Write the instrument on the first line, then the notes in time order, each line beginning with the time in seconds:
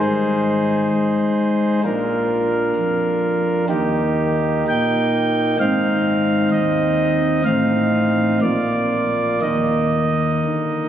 pipe organ
0.00 G#1 G#2 D#4 G#4 C5
0.93 G#3
1.84 A#1 A#2 D4 F4 A#4
2.76 F2
3.69 D#2 D#3 A#3 D#4 G4
4.68 A#2 G5
5.60 G#1 G#2 C4 D#4 F5
6.52 D#2 D#5
7.45 A1 A2 C4 D#4 F5
8.41 A#1 A#2 A#3 F4 D5
9.41 D#2 D#3 A#3 D#4 D#5
10.45 D3